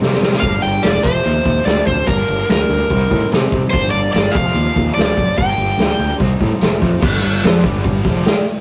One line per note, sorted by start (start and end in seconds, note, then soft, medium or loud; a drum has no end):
0.00 0.41 C3 medium
0.00 0.15 C3 medium
0.00 0.41 G3 medium
0.00 0.42 C4 medium
0.00 0.43 D#4 medium
0.00 snare soft
0.13 snare medium
0.21 0.34 C3 medium
0.21 snare medium
0.33 snare medium
0.40 0.56 G1 medium
0.40 1.02 G2 medium
0.40 1.03 D3 medium
0.40 1.04 G3 medium
0.40 0.63 F5 medium
0.40 kick loud
0.40 open hi-hat medium
0.44 1.04 A#3 medium
0.44 1.05 D4 medium
0.62 0.76 G1 medium
0.62 0.84 G5 medium
0.62 open hi-hat soft
0.83 0.97 E1 medium
0.83 1.05 D5 medium
0.83 snare loud
0.83 open hi-hat medium
1.03 1.18 F1 medium
1.03 2.06 F2 medium
1.03 2.06 C3 medium
1.03 2.07 F3 medium
1.03 2.07 A3 medium
1.03 1.68 C5 medium
1.03 kick loud
1.03 open hi-hat soft
1.07 2.08 C4 medium
1.25 1.39 D#2 medium
1.25 open hi-hat medium
1.45 1.59 D#2 medium
1.45 kick medium
1.45 open hi-hat soft
1.65 1.79 D2 medium
1.65 1.87 D5 medium
1.65 snare medium
1.65 open hi-hat medium
1.86 2.00 D2 medium
1.86 2.09 C5 medium
1.86 kick medium
1.86 open hi-hat soft
2.06 2.21 G1 medium
2.06 2.88 G2 medium
2.06 2.88 D3 medium
2.06 2.89 G3 medium
2.06 2.90 A#3 medium
2.06 2.50 A#4 medium
2.06 kick loud
2.06 open hi-hat medium
2.10 2.90 D4 medium
2.28 2.42 G1 medium
2.28 open hi-hat soft
2.48 2.62 D2 medium
2.48 3.28 A#4 medium
2.48 snare loud
2.48 open hi-hat medium
2.69 2.82 D2 medium
2.69 open hi-hat soft
2.89 3.04 C2 medium
2.89 3.71 C3 medium
2.89 3.72 G3 medium
2.89 3.72 C4 loud
2.89 kick medium
2.89 open hi-hat medium
2.93 3.73 D#4 loud
3.11 3.24 A2 medium
3.11 kick medium
3.11 open hi-hat medium
3.32 3.45 C3 medium
3.32 snare loud
3.32 open hi-hat medium
3.52 3.65 C3 medium
3.52 kick medium
3.52 open hi-hat medium
3.71 3.86 G1 medium
3.71 4.32 G2 medium
3.71 4.34 D3 medium
3.71 4.34 G3 medium
3.71 3.90 C5 medium
3.71 kick loud
3.71 open hi-hat medium
3.75 4.35 A#3 medium
3.75 4.35 D4 medium
3.91 4.06 G1 medium
3.91 4.11 D5 medium
3.91 open hi-hat soft
4.13 4.27 G1 medium
4.13 4.35 D5 medium
4.13 snare loud
4.13 open hi-hat medium
4.32 4.48 F1 medium
4.32 5.35 F2 medium
4.32 5.36 C3 medium
4.32 5.37 F3 medium
4.32 4.94 F5 medium
4.32 kick loud
4.36 5.37 A3 medium
4.36 5.38 C4 medium
4.36 open hi-hat soft
4.54 4.67 D#2 medium
4.54 open hi-hat medium
4.76 4.89 D#2 medium
4.76 kick medium
4.76 open hi-hat soft
4.94 5.10 D2 medium
4.94 5.38 D5 medium
4.94 open hi-hat medium
4.99 snare medium
5.17 5.31 F#1 medium
5.17 kick medium
5.17 open hi-hat soft
5.36 5.51 G1 medium
5.36 6.18 G2 medium
5.36 6.18 D3 medium
5.36 6.19 G3 medium
5.36 6.19 A#3 medium
5.36 6.20 D4 medium
5.36 6.16 G5 medium
5.36 kick loud
5.36 open hi-hat medium
5.58 5.71 G1 medium
5.58 open hi-hat soft
5.78 5.91 D2 medium
5.78 snare loud
5.78 open hi-hat medium
5.99 6.12 D2 medium
5.99 open hi-hat soft
6.18 6.33 C2 medium
6.18 6.59 C3 medium
6.18 6.60 G3 medium
6.18 6.60 C4 medium
6.18 6.61 D#4 medium
6.18 kick loud
6.18 open hi-hat medium
6.40 6.54 A2 medium
6.40 kick medium
6.40 open hi-hat medium
6.59 6.74 F1 medium
6.59 7.00 F2 medium
6.59 7.01 C3 medium
6.59 7.01 F3 medium
6.59 7.01 A3 medium
6.59 snare loud
6.59 open hi-hat medium
6.63 7.02 C4 medium
6.82 6.95 F2 medium
6.82 kick medium
6.82 open hi-hat medium
7.01 7.21 G1 medium
7.01 7.21 G2 loud
7.01 7.21 D3 loud
7.01 7.22 G3 loud
7.01 kick loud
7.01 crash loud
7.22 7.42 G1 medium
7.22 7.39 G2 medium
7.22 7.39 D3 medium
7.43 7.63 F2 medium
7.43 7.63 F3 medium
7.43 7.63 C4 medium
7.43 7.63 F4 loud
7.43 snare loud
7.43 open hi-hat medium
7.64 8.02 G1 medium
7.64 8.04 G2 medium
7.64 8.05 D3 medium
7.64 8.05 G3 medium
7.64 kick medium
7.84 kick medium
7.84 open hi-hat medium
8.05 8.24 F1 medium
8.05 8.25 F2 medium
8.05 8.25 C3 loud
8.05 8.25 F3 medium
8.05 kick medium
8.05 snare soft
8.25 snare loud
8.25 open hi-hat medium